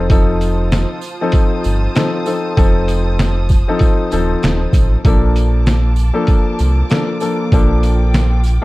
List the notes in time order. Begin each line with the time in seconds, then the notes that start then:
Already playing: F1 F4 C5 A5 D#6
0.10 F3 C4 D#4 A4, kick, closed hi-hat, sleigh bells
0.41 closed hi-hat, shaker, sleigh bells
0.72 snare, closed hi-hat, sleigh bells
1.01 shaker, sleigh bells
1.21 F3 C4 D#4 A4
1.32 kick, closed hi-hat, sleigh bells
1.64 G1, shaker, sleigh bells
1.95 F3 C4 D#4 A4, snare, closed hi-hat, sleigh bells
2.26 F3 C4 D#4 A4, shaker, sleigh bells
2.57 F1 F3 C4 D#4 A4, kick, closed hi-hat, sleigh bells
2.88 closed hi-hat, shaker, sleigh bells
3.19 snare, closed hi-hat, sleigh bells
3.49 kick, shaker, sleigh bells
3.68 F3 C4 D#4 A4
3.79 kick, closed hi-hat, sleigh bells
4.11 D#1 F3 C4 D#4 A4, shaker, sleigh bells
4.43 D#1, snare, closed hi-hat, sleigh bells
4.73 A1, kick, closed hi-hat, shaker, sleigh bells
5.04 A#1 F3 A#3 D4 F4 A4 A5 D6, kick, closed hi-hat, sleigh bells
5.36 closed hi-hat, shaker, sleigh bells
5.66 snare, closed hi-hat, sleigh bells
5.96 shaker, sleigh bells
6.14 F3 A#3 D4 A4
6.27 kick, closed hi-hat, sleigh bells
6.59 C2, shaker, sleigh bells
6.89 F3 A#3 D4 A4, snare, closed hi-hat, sleigh bells
7.20 F3 A#3 D4 A4, shaker, sleigh bells
7.52 A#1 F3 A#3 D4 A4 G5, kick, closed hi-hat, sleigh bells
7.83 closed hi-hat, shaker, sleigh bells
8.14 snare, closed hi-hat, sleigh bells
8.44 shaker, sleigh bells